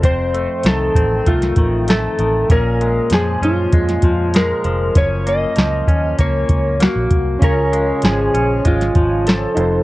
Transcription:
<<
  \new Staff \with { instrumentName = "Electric slide guitar" } { \time 4/4 \key des \major \tempo 4 = 98 c''4 a'4 f'4 a'4 | bes'4 aes'8 f'4. bes'4 | des''8 ees''4. des''4 ges'4 | bes'4 aes'4 f'4 a'4 | }
  \new Staff \with { instrumentName = "Synth keys" } { \time 4/4 \key des \major r1 | r1 | r1 | <des' f' des'' aes''>2.~ <des' f' des'' aes''>8 <ees' f' a' c''>8 | }
  \new Staff \with { instrumentName = "Clean electric guitar" } { \clef bass \time 4/4 \key des \major <f, c'>8 a8 ees8 c'8 a8 ees8 a8 ees8 | <bes, des'>8 aes8 f8 des'8 aes8 f8 aes8 f8 | <ges, des'>8 bes8 f8 des'8 bes4 bes4 | <des des'>8 aes8 f8 des'8 aes8 f4 f,8 | }
  \new Staff \with { instrumentName = "Fingered electric bass" } { \clef bass \time 4/4 \key des \major f,,4 c,8 a,,8 c,8 a,,4 a,,8 | bes,,4 f,8 ges,8 f,8 f,4 f,,8 | ges,,4 des,8 ees,8 des,8 des,8. bes,,16 c,8 | des,4 aes,,8 bes,,8 aes,,8 aes,,4 f,,8 | }
  \new DrumStaff \with { instrumentName = "Drums" } \drummode { \time 4/4 <hh bd>8 hh8 <hh sn>8 <hh bd>8 <hh bd>16 <hh sn>16 <hh bd>8 <hh sn>8 hh8 | <hh bd>8 hh8 <hh sn>8 hh8 <hh bd>16 <hh sn>16 <hh bd>8 <hh sn>8 hh8 | <hh bd>8 hh8 <hh sn>8 <hh bd>8 <hh bd>8 <hh bd>8 <hh sn>8 <hh bd>8 | <hh bd>8 hh8 <hh sn>8 hh8 <hh bd>16 <hh sn>16 <hh bd>8 <hh sn>8 hh8 | }
>>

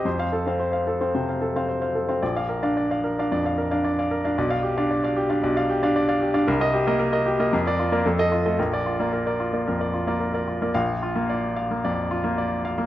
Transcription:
<<
  \new Staff \with { instrumentName = "Grand piano" } { \time 4/4 \key f \mixolydian \tempo 4 = 112 << { r16 f''16 r2. r8 | r16 f''16 r2. r8 | r16 f''16 r2. r8 | r16 ees''16 r4. r16 d''16 r8. ees''16 r8 |
r16 d''16 r2. r8 | f''8. r2. r16 | } \\ { c''16 c''16 a'16 <c'' f''>16 c''16 <c'' f''>16 a'16 <c'' f''>16 c''16 <c'' f''>16 a'16 <c'' f''>16 c''16 <c'' f''>16 a'16 <c'' f''>16 | d''16 d''16 bes'16 <d'' f''>16 d''16 <d'' f''>16 bes'16 <d'' f''>16 d''16 <d'' f''>16 bes'16 <d'' f''>16 d''16 <d'' f''>16 bes'16 <d'' f''>16 | d''16 d''16 g'16 <d'' f''>16 d''16 <d'' f''>16 g'16 <d'' f''>16 d''16 <d'' f''>16 g'16 <d'' f''>16 d''16 <d'' f''>16 g'16 <d'' f''>16 | bes'16 bes'16 g'16 <bes' ees''>16 bes'16 <bes' ees''>16 g'16 <bes' ees''>16 bes'16 bes'16 f'16 <bes' d''>16 a'16 a'16 f'16 <a' ees''>16 |
bes'16 bes'16 f'16 <bes' d''>16 bes'16 <bes' d''>16 f'16 <bes' d''>16 bes'16 <bes' d''>16 f'16 <bes' d''>16 bes'16 <bes' d''>16 f'16 <bes' d''>16 | r8 f'8 d''8 f''8 d''8 f'8 d''8 f''8 | } >> }
  \new Staff \with { instrumentName = "Grand piano" } { \time 4/4 \key f \mixolydian f,8. c'8 r8 c'16 c8 r16 c'8 r8 c'16 | bes,,8. d'8 r8 d'16 f,8 r16 d'8 r8 d'16 | b,,8. d'8 r8 d'16 b,,8. d'8 r8 d'16 | c,8. bes8 r8 bes16 f,8. bes16 f,8. a16 |
bes,,8. bes8 r8 bes16 f,8 r16 bes8 r8 bes16 | bes,,8. bes8 r8 bes16 f,8 r16 bes8 r8 bes16 | }
>>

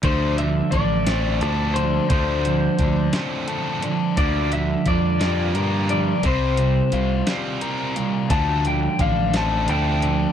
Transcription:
<<
  \new Staff \with { instrumentName = "Clean electric guitar" } { \time 6/8 \key d \minor \tempo 4. = 58 c''8 e''8 d''4. c''8 | c''2~ c''8 r8 | d''8 e''8 d''4. d''8 | c''2~ c''8 r8 |
a''8 g''8 f''8 a''8 g''4 | }
  \new Staff \with { instrumentName = "Overdriven electric guitar" } { \time 6/8 \key d \minor d4 d'8 c'8 a'8 d'8 | d4 d'8 c'8 a'8 d'8 | d4 d'8 g8 bes'8 d'8 | c4 f'8 g8 bes'8 f'8 |
d4 d'8 c'8 a'8 d'8 | }
  \new Staff \with { instrumentName = "Distorted electric guitar" } { \clef bass \time 6/8 \key d \minor <d f a>8 <d f>8 <d f>8 <d f a>4 <d f>8 | <d f a>8 <d f>8 <d f>8 <d f a>4 <d f>8 | <d f bes>8 <d f>8 <d f>8 <d f bes>4 <d f>8 | <c g c'>8 <c g>8 <c g>8 <c g c'>4 <c g>8 |
<d f a>8 <d f>8 <d f>8 <d f a>4 <d f>8 | }
  \new Staff \with { instrumentName = "Fingered electric bass" } { \clef bass \time 6/8 \key d \minor d,4 a,,4 d,4 | d,4 d,8 r4. | d,4 f,4 g,4 | c,4 c,8 r4. |
d,4 a,,4 d,4 | }
  \new DrumStaff \with { instrumentName = "Drums" } \drummode { \time 6/8 <hh bd>8 hh8 <hh bd>8 <hh sn>8 hh8 hh8 | <hh bd>8 hh8 <hh bd>8 <hh sn>8 hh8 hh8 | <hh bd>8 hh8 <hh bd>8 <hh sn>8 hh8 hh8 | <hh bd>8 hh8 hh8 <hh sn>8 hh8 hh8 |
<hh bd>8 hh8 <hh bd>8 <hh sn>8 hh8 hh8 | }
>>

